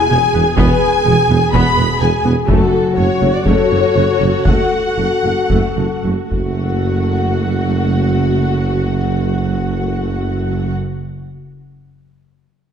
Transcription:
0.00 0.10 E4 medium
0.00 2.45 G#4 medium
0.00 0.56 G#5 medium
0.00 0.56 G#5 loud
0.09 0.20 E1 medium
0.09 0.19 E1 medium
0.09 0.19 E2 medium
0.09 0.18 B3 medium
0.09 0.43 G#4 medium
0.34 0.42 E1 medium
0.34 0.44 E1 medium
0.34 0.42 E2 soft
0.34 0.42 B3 medium
0.57 0.66 E1 medium
0.57 0.68 E1 medium
0.57 0.66 E2 medium
0.57 0.80 B3 medium
0.57 1.04 B4 medium
0.57 1.51 G#5 medium
0.57 taiko medium
1.05 1.14 E1 medium
1.05 1.15 E1 medium
1.05 1.14 E2 medium
1.05 1.13 B3 medium
1.05 2.01 G#4 medium
1.29 1.37 E1 medium
1.29 1.39 E1 medium
1.29 1.38 E2 medium
1.29 1.37 B3 medium
1.53 1.61 E1 medium
1.53 1.63 E1 medium
1.53 1.61 E2 medium
1.53 1.75 B3 medium
1.53 2.00 B5 loud
1.53 2.00 B5 medium
1.53 taiko medium
1.76 1.87 E1 medium
1.76 1.86 E1 medium
1.76 1.86 E2 medium
1.76 1.84 B3 medium
1.99 2.11 E1 medium
1.99 2.10 E1 medium
1.99 2.10 E2 soft
1.99 2.08 B3 medium
1.99 2.49 G#4 medium
1.99 2.24 G#5 medium
1.99 2.25 G#5 medium
2.25 2.34 E1 medium
2.25 2.33 E1 medium
2.25 2.33 E2 soft
2.25 2.33 B3 medium
2.47 2.59 F#1 medium
2.47 2.57 F#1 medium
2.47 3.17 F#2 medium
2.47 2.57 F#2 medium
2.47 2.71 A3 medium
2.47 6.30 F#4 medium
2.47 3.44 F#4 medium
2.47 2.93 A4 medium
2.47 2.94 A4 medium
2.47 taiko medium
2.96 3.07 F#1 soft
2.96 3.06 F#1 soft
2.96 3.06 F#2 soft
2.96 3.04 A3 soft
2.96 3.33 C#5 medium
2.96 3.34 C#5 medium
3.21 3.31 F#1 soft
3.21 3.30 F#1 soft
3.21 3.30 F#2 soft
3.21 3.29 A3 soft
3.34 3.46 D5 medium
3.34 3.47 D5 medium
3.45 3.56 F#1 medium
3.45 3.54 F#1 medium
3.45 3.54 F#2 medium
3.45 3.69 A3 medium
3.45 4.46 A4 medium
3.45 4.43 C#5 medium
3.45 4.46 C#5 medium
3.45 taiko medium
3.71 3.81 F#1 soft
3.71 3.79 F#1 soft
3.71 3.79 F#2 soft
3.71 3.79 A3 soft
3.95 4.05 F#1 soft
3.95 4.04 F#1 soft
3.95 4.04 F#2 soft
3.95 4.03 A3 soft
4.20 4.30 F#1 soft
4.20 4.28 F#1 soft
4.20 4.29 F#2 soft
4.20 4.29 A3 soft
4.45 4.56 F#1 medium
4.45 4.54 F#1 soft
4.45 4.53 F#2 soft
4.45 4.70 A3 medium
4.45 6.28 A4 medium
4.45 6.03 F#5 medium
4.45 6.04 F#5 medium
4.45 taiko medium
4.97 5.08 F#1 soft
4.97 5.06 F#1 soft
4.97 5.05 F#2 soft
4.97 5.05 A3 soft
5.23 5.34 F#1 soft
5.23 5.32 F#1 soft
5.23 5.31 F#2 soft
5.23 5.31 A3 soft
5.50 5.60 F#1 soft
5.50 5.58 F#1 soft
5.50 5.58 F#2 soft
5.50 5.75 A3 soft
5.50 taiko medium
5.76 5.88 F#1 soft
5.76 5.85 F#1 soft
5.76 5.84 F#2 soft
5.76 5.84 A3 soft
6.03 6.15 F#1 soft
6.03 6.12 F#1 soft
6.03 6.11 F#2 soft
6.03 6.12 A3 soft
6.30 10.73 F#1 soft
6.30 10.74 F#1 soft
6.30 10.73 F#2 soft
6.30 10.73 A3 soft
6.30 10.73 F#4 soft
6.30 10.72 F#5 soft
6.30 taiko soft

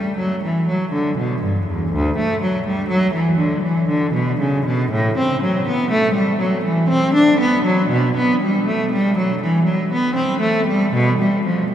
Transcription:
0.00 0.18 G3 medium
0.17 0.42 F#3 medium
0.43 0.67 E3 medium
0.68 0.91 F#3 medium
0.92 1.16 D3 medium
1.17 1.41 B2 medium
1.43 1.66 G2 medium
1.67 1.91 E2 medium
1.92 2.16 D2 medium
2.18 2.41 A3 medium
2.42 2.65 F#3 medium
2.66 2.90 G3 medium
2.88 3.13 F#3 medium
3.13 3.38 E3 medium
3.38 3.63 D3 medium
3.63 3.88 E3 medium
3.89 4.14 D3 medium
4.13 4.39 B2 medium
4.39 4.65 C#3 medium
4.65 4.91 B2 medium
4.91 5.17 A2 medium
5.18 5.42 C4 medium
5.42 5.67 F#3 medium
5.68 5.92 B3 medium
5.91 6.15 A3 medium
6.14 6.39 G3 medium
6.39 6.64 F#3 medium
6.64 6.89 E3 medium
6.88 7.14 C4 medium
7.14 7.39 D4 medium
7.40 7.64 B3 medium
7.64 7.89 F#3 medium
7.90 8.14 B2 medium
8.17 8.40 B3 medium
8.43 8.66 G3 medium
8.67 8.90 A3 medium
8.92 9.15 G3 medium
9.17 9.41 F#3 medium
9.42 9.66 E3 medium
9.65 9.90 F#3 medium
9.92 10.16 B3 medium
10.15 10.41 C4 medium
10.41 10.66 A3 medium
10.67 10.93 G3 medium
10.93 11.19 B2 medium
11.20 11.45 G3 medium
11.46 11.70 F3 medium
11.70 11.75 G3 medium

